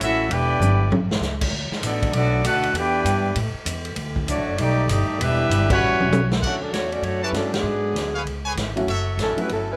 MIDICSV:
0, 0, Header, 1, 9, 480
1, 0, Start_track
1, 0, Key_signature, 2, "major"
1, 0, Tempo, 305966
1, 491, Time_signature, 4, 2, 24, 8
1, 15319, End_track
2, 0, Start_track
2, 0, Title_t, "Trumpet section"
2, 0, Program_c, 0, 61
2, 10076, Note_on_c, 0, 69, 78
2, 10078, Note_on_c, 0, 73, 70
2, 10079, Note_on_c, 0, 74, 71
2, 10079, Note_on_c, 0, 78, 89
2, 10275, Note_off_c, 0, 69, 0
2, 10276, Note_off_c, 0, 73, 0
2, 10277, Note_off_c, 0, 78, 0
2, 10278, Note_off_c, 0, 74, 0
2, 11333, Note_on_c, 0, 81, 94
2, 11335, Note_on_c, 0, 73, 80
2, 11337, Note_on_c, 0, 69, 83
2, 11339, Note_on_c, 0, 74, 79
2, 11457, Note_off_c, 0, 81, 0
2, 11459, Note_off_c, 0, 73, 0
2, 11460, Note_off_c, 0, 69, 0
2, 11461, Note_off_c, 0, 74, 0
2, 12774, Note_on_c, 0, 77, 94
2, 12775, Note_on_c, 0, 71, 82
2, 12776, Note_on_c, 0, 68, 83
2, 12781, Note_on_c, 0, 73, 82
2, 12901, Note_off_c, 0, 71, 0
2, 12901, Note_off_c, 0, 77, 0
2, 12902, Note_off_c, 0, 68, 0
2, 12905, Note_off_c, 0, 73, 0
2, 13256, Note_on_c, 0, 73, 74
2, 13258, Note_on_c, 0, 71, 81
2, 13258, Note_on_c, 0, 80, 104
2, 13261, Note_on_c, 0, 68, 90
2, 13383, Note_off_c, 0, 73, 0
2, 13384, Note_off_c, 0, 71, 0
2, 13384, Note_off_c, 0, 80, 0
2, 13386, Note_off_c, 0, 68, 0
2, 13920, Note_on_c, 0, 66, 93
2, 13921, Note_on_c, 0, 73, 84
2, 13925, Note_on_c, 0, 69, 88
2, 13925, Note_on_c, 0, 76, 104
2, 14645, Note_off_c, 0, 66, 0
2, 14646, Note_off_c, 0, 73, 0
2, 14647, Note_off_c, 0, 69, 0
2, 14647, Note_off_c, 0, 76, 0
2, 15319, End_track
3, 0, Start_track
3, 0, Title_t, "Trumpet section"
3, 0, Program_c, 1, 61
3, 42, Note_on_c, 1, 69, 87
3, 43, Note_on_c, 1, 76, 115
3, 51, Note_on_c, 1, 66, 102
3, 63, Note_on_c, 1, 61, 93
3, 473, Note_off_c, 1, 69, 0
3, 474, Note_off_c, 1, 76, 0
3, 478, Note_off_c, 1, 66, 0
3, 484, Note_off_c, 1, 61, 0
3, 503, Note_on_c, 1, 74, 102
3, 506, Note_on_c, 1, 79, 113
3, 507, Note_on_c, 1, 71, 99
3, 519, Note_on_c, 1, 64, 99
3, 1453, Note_off_c, 1, 74, 0
3, 1454, Note_off_c, 1, 79, 0
3, 1455, Note_off_c, 1, 71, 0
3, 1461, Note_off_c, 1, 64, 0
3, 2902, Note_on_c, 1, 74, 93
3, 2906, Note_on_c, 1, 69, 81
3, 2915, Note_on_c, 1, 59, 71
3, 2918, Note_on_c, 1, 66, 75
3, 3337, Note_off_c, 1, 74, 0
3, 3340, Note_off_c, 1, 69, 0
3, 3344, Note_off_c, 1, 59, 0
3, 3346, Note_off_c, 1, 66, 0
3, 3388, Note_on_c, 1, 74, 113
3, 3391, Note_on_c, 1, 69, 89
3, 3393, Note_on_c, 1, 66, 97
3, 3395, Note_on_c, 1, 59, 85
3, 3820, Note_off_c, 1, 74, 0
3, 3822, Note_off_c, 1, 66, 0
3, 3822, Note_off_c, 1, 69, 0
3, 3823, Note_off_c, 1, 59, 0
3, 3879, Note_on_c, 1, 78, 111
3, 3881, Note_on_c, 1, 62, 93
3, 3882, Note_on_c, 1, 69, 94
3, 3885, Note_on_c, 1, 71, 90
3, 4305, Note_off_c, 1, 78, 0
3, 4306, Note_off_c, 1, 62, 0
3, 4307, Note_off_c, 1, 69, 0
3, 4308, Note_off_c, 1, 71, 0
3, 4368, Note_on_c, 1, 64, 90
3, 4368, Note_on_c, 1, 79, 113
3, 4372, Note_on_c, 1, 74, 104
3, 4380, Note_on_c, 1, 71, 91
3, 5300, Note_off_c, 1, 64, 0
3, 5300, Note_off_c, 1, 79, 0
3, 5302, Note_off_c, 1, 74, 0
3, 5306, Note_off_c, 1, 71, 0
3, 6733, Note_on_c, 1, 66, 72
3, 6735, Note_on_c, 1, 74, 94
3, 6736, Note_on_c, 1, 57, 82
3, 6738, Note_on_c, 1, 73, 79
3, 7169, Note_off_c, 1, 66, 0
3, 7170, Note_off_c, 1, 74, 0
3, 7171, Note_off_c, 1, 57, 0
3, 7171, Note_off_c, 1, 73, 0
3, 7227, Note_on_c, 1, 67, 98
3, 7228, Note_on_c, 1, 57, 93
3, 7234, Note_on_c, 1, 74, 112
3, 7238, Note_on_c, 1, 63, 93
3, 7656, Note_off_c, 1, 67, 0
3, 7657, Note_off_c, 1, 57, 0
3, 7660, Note_off_c, 1, 74, 0
3, 7662, Note_off_c, 1, 63, 0
3, 7676, Note_on_c, 1, 67, 87
3, 7677, Note_on_c, 1, 57, 88
3, 7677, Note_on_c, 1, 75, 101
3, 7679, Note_on_c, 1, 74, 96
3, 8153, Note_off_c, 1, 67, 0
3, 8153, Note_off_c, 1, 75, 0
3, 8154, Note_off_c, 1, 57, 0
3, 8155, Note_off_c, 1, 74, 0
3, 8164, Note_on_c, 1, 71, 90
3, 8169, Note_on_c, 1, 67, 105
3, 8171, Note_on_c, 1, 62, 103
3, 8175, Note_on_c, 1, 76, 123
3, 8934, Note_off_c, 1, 71, 0
3, 8937, Note_off_c, 1, 67, 0
3, 8938, Note_off_c, 1, 62, 0
3, 8940, Note_off_c, 1, 76, 0
3, 8973, Note_on_c, 1, 73, 103
3, 8978, Note_on_c, 1, 64, 95
3, 8980, Note_on_c, 1, 71, 105
3, 8986, Note_on_c, 1, 78, 115
3, 9849, Note_off_c, 1, 73, 0
3, 9852, Note_off_c, 1, 64, 0
3, 9852, Note_off_c, 1, 71, 0
3, 9855, Note_off_c, 1, 78, 0
3, 15319, End_track
4, 0, Start_track
4, 0, Title_t, "Saxophone section"
4, 0, Program_c, 2, 65
4, 10116, Note_on_c, 2, 50, 81
4, 10124, Note_on_c, 2, 61, 81
4, 10130, Note_on_c, 2, 57, 71
4, 10133, Note_on_c, 2, 66, 88
4, 10366, Note_off_c, 2, 61, 0
4, 10372, Note_off_c, 2, 50, 0
4, 10379, Note_on_c, 2, 62, 80
4, 10380, Note_off_c, 2, 57, 0
4, 10380, Note_on_c, 2, 54, 78
4, 10382, Note_off_c, 2, 66, 0
4, 10385, Note_on_c, 2, 61, 75
4, 10386, Note_on_c, 2, 69, 86
4, 10538, Note_off_c, 2, 62, 0
4, 10552, Note_on_c, 2, 66, 85
4, 10553, Note_on_c, 2, 57, 85
4, 10556, Note_on_c, 2, 62, 84
4, 10557, Note_on_c, 2, 73, 94
4, 10559, Note_off_c, 2, 54, 0
4, 10561, Note_off_c, 2, 61, 0
4, 10562, Note_off_c, 2, 69, 0
4, 10830, Note_off_c, 2, 66, 0
4, 10831, Note_off_c, 2, 57, 0
4, 10832, Note_off_c, 2, 62, 0
4, 10832, Note_off_c, 2, 73, 0
4, 10863, Note_on_c, 2, 57, 84
4, 10865, Note_on_c, 2, 74, 92
4, 10869, Note_on_c, 2, 61, 85
4, 10869, Note_on_c, 2, 66, 83
4, 11031, Note_off_c, 2, 57, 0
4, 11037, Note_off_c, 2, 66, 0
4, 11042, Note_off_c, 2, 74, 0
4, 11045, Note_off_c, 2, 61, 0
4, 11047, Note_on_c, 2, 73, 99
4, 11050, Note_on_c, 2, 57, 86
4, 11054, Note_on_c, 2, 62, 79
4, 11056, Note_on_c, 2, 66, 89
4, 11333, Note_on_c, 2, 71, 88
4, 11338, Note_on_c, 2, 55, 76
4, 11339, Note_off_c, 2, 73, 0
4, 11341, Note_off_c, 2, 57, 0
4, 11343, Note_off_c, 2, 62, 0
4, 11344, Note_off_c, 2, 66, 0
4, 11344, Note_on_c, 2, 61, 84
4, 11348, Note_on_c, 2, 64, 76
4, 11516, Note_off_c, 2, 61, 0
4, 11517, Note_off_c, 2, 71, 0
4, 11520, Note_off_c, 2, 55, 0
4, 11525, Note_off_c, 2, 64, 0
4, 11535, Note_on_c, 2, 61, 77
4, 11539, Note_on_c, 2, 69, 92
4, 11540, Note_on_c, 2, 54, 69
4, 11541, Note_on_c, 2, 62, 77
4, 11787, Note_off_c, 2, 54, 0
4, 11800, Note_off_c, 2, 62, 0
4, 11805, Note_on_c, 2, 54, 80
4, 11809, Note_on_c, 2, 68, 96
4, 11819, Note_on_c, 2, 62, 88
4, 11821, Note_on_c, 2, 59, 79
4, 11824, Note_off_c, 2, 61, 0
4, 11826, Note_off_c, 2, 69, 0
4, 12896, Note_off_c, 2, 54, 0
4, 12903, Note_off_c, 2, 62, 0
4, 13196, Note_off_c, 2, 68, 0
4, 13202, Note_off_c, 2, 59, 0
4, 14475, Note_on_c, 2, 69, 92
4, 14476, Note_on_c, 2, 64, 71
4, 14477, Note_on_c, 2, 61, 79
4, 14485, Note_on_c, 2, 54, 73
4, 14722, Note_off_c, 2, 69, 0
4, 14723, Note_off_c, 2, 64, 0
4, 14724, Note_off_c, 2, 61, 0
4, 14728, Note_off_c, 2, 54, 0
4, 14756, Note_on_c, 2, 55, 70
4, 14761, Note_on_c, 2, 64, 79
4, 14766, Note_on_c, 2, 71, 90
4, 14767, Note_on_c, 2, 61, 73
4, 14905, Note_off_c, 2, 55, 0
4, 14908, Note_off_c, 2, 64, 0
4, 14911, Note_off_c, 2, 61, 0
4, 14911, Note_off_c, 2, 71, 0
4, 14936, Note_on_c, 2, 64, 78
4, 14942, Note_on_c, 2, 61, 79
4, 14946, Note_on_c, 2, 69, 84
4, 14948, Note_on_c, 2, 54, 81
4, 15194, Note_off_c, 2, 64, 0
4, 15197, Note_off_c, 2, 61, 0
4, 15198, Note_off_c, 2, 69, 0
4, 15199, Note_off_c, 2, 54, 0
4, 15233, Note_on_c, 2, 64, 80
4, 15240, Note_on_c, 2, 61, 82
4, 15247, Note_on_c, 2, 55, 84
4, 15248, Note_on_c, 2, 71, 93
4, 15319, Note_off_c, 2, 55, 0
4, 15319, Note_off_c, 2, 61, 0
4, 15319, Note_off_c, 2, 64, 0
4, 15319, Note_off_c, 2, 71, 0
4, 15319, End_track
5, 0, Start_track
5, 0, Title_t, "Grand piano"
5, 0, Program_c, 3, 0
5, 11488, Note_on_c, 3, 57, 50
5, 11491, Note_on_c, 3, 61, 46
5, 11503, Note_on_c, 3, 64, 50
5, 11504, Note_on_c, 3, 62, 44
5, 11514, Note_on_c, 3, 66, 58
5, 11771, Note_off_c, 3, 57, 0
5, 11773, Note_off_c, 3, 61, 0
5, 11779, Note_off_c, 3, 62, 0
5, 11779, Note_off_c, 3, 64, 0
5, 11784, Note_off_c, 3, 66, 0
5, 13737, Note_on_c, 3, 54, 63
5, 13744, Note_on_c, 3, 57, 55
5, 13748, Note_on_c, 3, 61, 65
5, 13762, Note_on_c, 3, 64, 62
5, 13762, Note_on_c, 3, 66, 73
5, 13907, Note_off_c, 3, 54, 0
5, 13910, Note_off_c, 3, 57, 0
5, 13912, Note_off_c, 3, 61, 0
5, 13919, Note_off_c, 3, 64, 0
5, 13919, Note_off_c, 3, 66, 0
5, 14700, Note_on_c, 3, 54, 63
5, 14700, Note_on_c, 3, 57, 59
5, 14705, Note_on_c, 3, 61, 56
5, 14707, Note_on_c, 3, 64, 63
5, 14718, Note_on_c, 3, 66, 68
5, 14870, Note_off_c, 3, 57, 0
5, 14871, Note_off_c, 3, 54, 0
5, 14873, Note_off_c, 3, 61, 0
5, 14874, Note_off_c, 3, 64, 0
5, 14879, Note_off_c, 3, 66, 0
5, 15319, End_track
6, 0, Start_track
6, 0, Title_t, "Trombone section"
6, 0, Program_c, 4, 61
6, 45, Note_on_c, 4, 64, 89
6, 48, Note_on_c, 4, 61, 96
6, 50, Note_on_c, 4, 57, 82
6, 475, Note_off_c, 4, 64, 0
6, 476, Note_off_c, 4, 61, 0
6, 478, Note_off_c, 4, 57, 0
6, 494, Note_on_c, 4, 59, 98
6, 494, Note_on_c, 4, 67, 91
6, 499, Note_on_c, 4, 62, 91
6, 1448, Note_off_c, 4, 59, 0
6, 1448, Note_off_c, 4, 67, 0
6, 1451, Note_off_c, 4, 62, 0
6, 2882, Note_on_c, 4, 57, 69
6, 2883, Note_on_c, 4, 62, 71
6, 2888, Note_on_c, 4, 59, 68
6, 3326, Note_off_c, 4, 57, 0
6, 3327, Note_off_c, 4, 62, 0
6, 3330, Note_off_c, 4, 59, 0
6, 3350, Note_on_c, 4, 57, 82
6, 3359, Note_on_c, 4, 54, 83
6, 3363, Note_on_c, 4, 62, 77
6, 3800, Note_off_c, 4, 57, 0
6, 3804, Note_off_c, 4, 54, 0
6, 3806, Note_off_c, 4, 62, 0
6, 3842, Note_on_c, 4, 57, 96
6, 3842, Note_on_c, 4, 66, 89
6, 3846, Note_on_c, 4, 62, 85
6, 4285, Note_off_c, 4, 57, 0
6, 4285, Note_off_c, 4, 66, 0
6, 4287, Note_off_c, 4, 62, 0
6, 4326, Note_on_c, 4, 59, 92
6, 4331, Note_on_c, 4, 62, 98
6, 4337, Note_on_c, 4, 67, 94
6, 5279, Note_off_c, 4, 59, 0
6, 5281, Note_off_c, 4, 62, 0
6, 5284, Note_off_c, 4, 67, 0
6, 6710, Note_on_c, 4, 57, 83
6, 6717, Note_on_c, 4, 62, 74
6, 6719, Note_on_c, 4, 54, 77
6, 7156, Note_off_c, 4, 57, 0
6, 7160, Note_off_c, 4, 62, 0
6, 7162, Note_off_c, 4, 54, 0
6, 7181, Note_on_c, 4, 63, 85
6, 7191, Note_on_c, 4, 55, 80
6, 7192, Note_on_c, 4, 57, 82
6, 7632, Note_off_c, 4, 63, 0
6, 7637, Note_off_c, 4, 55, 0
6, 7638, Note_off_c, 4, 57, 0
6, 7679, Note_on_c, 4, 57, 80
6, 7680, Note_on_c, 4, 63, 83
6, 7684, Note_on_c, 4, 55, 88
6, 8153, Note_off_c, 4, 55, 0
6, 8154, Note_off_c, 4, 57, 0
6, 8155, Note_off_c, 4, 63, 0
6, 8162, Note_on_c, 4, 59, 93
6, 8165, Note_on_c, 4, 64, 97
6, 8172, Note_on_c, 4, 55, 96
6, 8925, Note_off_c, 4, 55, 0
6, 8933, Note_off_c, 4, 59, 0
6, 8934, Note_off_c, 4, 64, 0
6, 8944, Note_on_c, 4, 55, 97
6, 8944, Note_on_c, 4, 61, 113
6, 8952, Note_on_c, 4, 66, 96
6, 9834, Note_off_c, 4, 55, 0
6, 9835, Note_off_c, 4, 61, 0
6, 9838, Note_off_c, 4, 66, 0
6, 15319, End_track
7, 0, Start_track
7, 0, Title_t, "Upright bass"
7, 0, Program_c, 5, 32
7, 9, Note_on_c, 5, 33, 92
7, 446, Note_off_c, 5, 33, 0
7, 455, Note_on_c, 5, 28, 88
7, 926, Note_off_c, 5, 28, 0
7, 936, Note_on_c, 5, 31, 103
7, 1408, Note_off_c, 5, 31, 0
7, 1418, Note_on_c, 5, 33, 92
7, 1875, Note_off_c, 5, 33, 0
7, 1885, Note_on_c, 5, 37, 86
7, 2359, Note_off_c, 5, 37, 0
7, 2368, Note_on_c, 5, 38, 100
7, 2659, Note_off_c, 5, 38, 0
7, 2846, Note_on_c, 5, 33, 105
7, 3318, Note_off_c, 5, 33, 0
7, 3327, Note_on_c, 5, 35, 96
7, 3804, Note_off_c, 5, 35, 0
7, 3813, Note_on_c, 5, 38, 88
7, 4275, Note_off_c, 5, 38, 0
7, 4284, Note_on_c, 5, 40, 89
7, 4764, Note_off_c, 5, 40, 0
7, 4776, Note_on_c, 5, 43, 107
7, 5250, Note_off_c, 5, 43, 0
7, 5265, Note_on_c, 5, 45, 100
7, 5545, Note_off_c, 5, 45, 0
7, 5731, Note_on_c, 5, 40, 100
7, 6197, Note_off_c, 5, 40, 0
7, 6206, Note_on_c, 5, 38, 102
7, 6684, Note_off_c, 5, 38, 0
7, 6692, Note_on_c, 5, 37, 95
7, 6853, Note_off_c, 5, 37, 0
7, 6853, Note_on_c, 5, 33, 66
7, 7015, Note_off_c, 5, 33, 0
7, 7024, Note_on_c, 5, 30, 76
7, 7170, Note_off_c, 5, 30, 0
7, 7179, Note_on_c, 5, 35, 87
7, 7645, Note_off_c, 5, 35, 0
7, 7655, Note_on_c, 5, 31, 101
7, 7938, Note_off_c, 5, 31, 0
7, 8136, Note_on_c, 5, 28, 92
7, 8608, Note_off_c, 5, 28, 0
7, 8621, Note_on_c, 5, 31, 107
7, 9092, Note_off_c, 5, 31, 0
7, 9103, Note_on_c, 5, 33, 84
7, 9252, Note_on_c, 5, 31, 64
7, 9276, Note_off_c, 5, 33, 0
7, 9408, Note_off_c, 5, 31, 0
7, 9417, Note_on_c, 5, 28, 69
7, 9573, Note_off_c, 5, 28, 0
7, 9581, Note_on_c, 5, 35, 90
7, 10053, Note_off_c, 5, 35, 0
7, 10078, Note_on_c, 5, 38, 85
7, 10522, Note_off_c, 5, 38, 0
7, 10531, Note_on_c, 5, 40, 84
7, 10999, Note_off_c, 5, 40, 0
7, 11009, Note_on_c, 5, 42, 78
7, 11475, Note_off_c, 5, 42, 0
7, 11484, Note_on_c, 5, 43, 83
7, 11961, Note_off_c, 5, 43, 0
7, 11970, Note_on_c, 5, 44, 90
7, 12438, Note_off_c, 5, 44, 0
7, 12447, Note_on_c, 5, 38, 90
7, 12932, Note_off_c, 5, 38, 0
7, 12946, Note_on_c, 5, 37, 86
7, 13409, Note_off_c, 5, 37, 0
7, 13419, Note_on_c, 5, 32, 85
7, 13900, Note_off_c, 5, 32, 0
7, 13915, Note_on_c, 5, 30, 84
7, 14382, Note_off_c, 5, 30, 0
7, 14391, Note_on_c, 5, 33, 89
7, 14678, Note_off_c, 5, 33, 0
7, 14895, Note_on_c, 5, 31, 83
7, 15319, Note_off_c, 5, 31, 0
7, 15319, End_track
8, 0, Start_track
8, 0, Title_t, "Muted upright bass strokes"
8, 2668, Note_on_c, 9, 29, 43
8, 2825, Note_off_c, 9, 29, 0
8, 5552, Note_on_c, 9, 29, 44
8, 5709, Note_off_c, 9, 29, 0
8, 14708, Note_on_c, 9, 29, 41
8, 14864, Note_off_c, 9, 29, 0
8, 15319, End_track
9, 0, Start_track
9, 0, Title_t, "Drums"
9, 15, Note_on_c, 9, 44, 58
9, 15, Note_on_c, 9, 51, 75
9, 172, Note_off_c, 9, 44, 0
9, 172, Note_off_c, 9, 51, 0
9, 483, Note_on_c, 9, 51, 76
9, 640, Note_off_c, 9, 51, 0
9, 964, Note_on_c, 9, 44, 60
9, 964, Note_on_c, 9, 48, 51
9, 1121, Note_off_c, 9, 44, 0
9, 1121, Note_off_c, 9, 48, 0
9, 1441, Note_on_c, 9, 48, 86
9, 1598, Note_off_c, 9, 48, 0
9, 1744, Note_on_c, 9, 38, 85
9, 1901, Note_off_c, 9, 38, 0
9, 1921, Note_on_c, 9, 38, 62
9, 1921, Note_on_c, 9, 44, 59
9, 2078, Note_off_c, 9, 38, 0
9, 2078, Note_off_c, 9, 44, 0
9, 2215, Note_on_c, 9, 49, 101
9, 2218, Note_on_c, 9, 36, 78
9, 2372, Note_off_c, 9, 49, 0
9, 2375, Note_off_c, 9, 36, 0
9, 2696, Note_on_c, 9, 38, 53
9, 2853, Note_off_c, 9, 38, 0
9, 2870, Note_on_c, 9, 44, 60
9, 2870, Note_on_c, 9, 51, 82
9, 3027, Note_off_c, 9, 44, 0
9, 3027, Note_off_c, 9, 51, 0
9, 3176, Note_on_c, 9, 36, 83
9, 3178, Note_on_c, 9, 51, 57
9, 3333, Note_off_c, 9, 36, 0
9, 3335, Note_off_c, 9, 51, 0
9, 3346, Note_on_c, 9, 51, 75
9, 3503, Note_off_c, 9, 51, 0
9, 3835, Note_on_c, 9, 44, 57
9, 3835, Note_on_c, 9, 51, 87
9, 3992, Note_off_c, 9, 44, 0
9, 3992, Note_off_c, 9, 51, 0
9, 4133, Note_on_c, 9, 51, 53
9, 4290, Note_off_c, 9, 51, 0
9, 4313, Note_on_c, 9, 51, 79
9, 4470, Note_off_c, 9, 51, 0
9, 4794, Note_on_c, 9, 44, 58
9, 4794, Note_on_c, 9, 51, 72
9, 4951, Note_off_c, 9, 44, 0
9, 4951, Note_off_c, 9, 51, 0
9, 5265, Note_on_c, 9, 51, 80
9, 5422, Note_off_c, 9, 51, 0
9, 5742, Note_on_c, 9, 44, 73
9, 5742, Note_on_c, 9, 51, 84
9, 5899, Note_off_c, 9, 44, 0
9, 5899, Note_off_c, 9, 51, 0
9, 6037, Note_on_c, 9, 51, 57
9, 6193, Note_off_c, 9, 51, 0
9, 6214, Note_on_c, 9, 51, 73
9, 6371, Note_off_c, 9, 51, 0
9, 6527, Note_on_c, 9, 36, 75
9, 6684, Note_off_c, 9, 36, 0
9, 6715, Note_on_c, 9, 44, 71
9, 6715, Note_on_c, 9, 51, 74
9, 6872, Note_off_c, 9, 44, 0
9, 6872, Note_off_c, 9, 51, 0
9, 7190, Note_on_c, 9, 51, 73
9, 7347, Note_off_c, 9, 51, 0
9, 7675, Note_on_c, 9, 44, 67
9, 7675, Note_on_c, 9, 51, 86
9, 7832, Note_off_c, 9, 44, 0
9, 7832, Note_off_c, 9, 51, 0
9, 8170, Note_on_c, 9, 51, 86
9, 8327, Note_off_c, 9, 51, 0
9, 8649, Note_on_c, 9, 44, 58
9, 8649, Note_on_c, 9, 51, 78
9, 8806, Note_off_c, 9, 44, 0
9, 8806, Note_off_c, 9, 51, 0
9, 8943, Note_on_c, 9, 36, 102
9, 8944, Note_on_c, 9, 49, 86
9, 9100, Note_off_c, 9, 36, 0
9, 9101, Note_off_c, 9, 49, 0
9, 9417, Note_on_c, 9, 48, 64
9, 9574, Note_off_c, 9, 48, 0
9, 9609, Note_on_c, 9, 44, 53
9, 9609, Note_on_c, 9, 48, 93
9, 9765, Note_off_c, 9, 44, 0
9, 9765, Note_off_c, 9, 48, 0
9, 9907, Note_on_c, 9, 38, 93
9, 10064, Note_off_c, 9, 38, 0
9, 10084, Note_on_c, 9, 36, 77
9, 10097, Note_on_c, 9, 49, 73
9, 10241, Note_off_c, 9, 36, 0
9, 10254, Note_off_c, 9, 49, 0
9, 10567, Note_on_c, 9, 38, 66
9, 10567, Note_on_c, 9, 44, 54
9, 10567, Note_on_c, 9, 51, 58
9, 10724, Note_off_c, 9, 38, 0
9, 10724, Note_off_c, 9, 44, 0
9, 10724, Note_off_c, 9, 51, 0
9, 10860, Note_on_c, 9, 51, 43
9, 11017, Note_off_c, 9, 51, 0
9, 11034, Note_on_c, 9, 51, 55
9, 11191, Note_off_c, 9, 51, 0
9, 11521, Note_on_c, 9, 38, 61
9, 11521, Note_on_c, 9, 44, 46
9, 11521, Note_on_c, 9, 51, 66
9, 11678, Note_off_c, 9, 38, 0
9, 11678, Note_off_c, 9, 44, 0
9, 11678, Note_off_c, 9, 51, 0
9, 11824, Note_on_c, 9, 38, 80
9, 11824, Note_on_c, 9, 51, 65
9, 11980, Note_off_c, 9, 38, 0
9, 11980, Note_off_c, 9, 51, 0
9, 12489, Note_on_c, 9, 38, 63
9, 12489, Note_on_c, 9, 44, 54
9, 12489, Note_on_c, 9, 51, 66
9, 12646, Note_off_c, 9, 38, 0
9, 12646, Note_off_c, 9, 44, 0
9, 12646, Note_off_c, 9, 51, 0
9, 12970, Note_on_c, 9, 51, 60
9, 13127, Note_off_c, 9, 51, 0
9, 13450, Note_on_c, 9, 38, 69
9, 13450, Note_on_c, 9, 44, 52
9, 13450, Note_on_c, 9, 51, 72
9, 13607, Note_off_c, 9, 38, 0
9, 13607, Note_off_c, 9, 44, 0
9, 13607, Note_off_c, 9, 51, 0
9, 13756, Note_on_c, 9, 51, 48
9, 13913, Note_off_c, 9, 51, 0
9, 13934, Note_on_c, 9, 51, 65
9, 14091, Note_off_c, 9, 51, 0
9, 14415, Note_on_c, 9, 38, 61
9, 14415, Note_on_c, 9, 44, 53
9, 14415, Note_on_c, 9, 51, 62
9, 14572, Note_off_c, 9, 38, 0
9, 14572, Note_off_c, 9, 44, 0
9, 14572, Note_off_c, 9, 51, 0
9, 14710, Note_on_c, 9, 51, 50
9, 14867, Note_off_c, 9, 51, 0
9, 14894, Note_on_c, 9, 51, 58
9, 15051, Note_off_c, 9, 51, 0
9, 15319, End_track
0, 0, End_of_file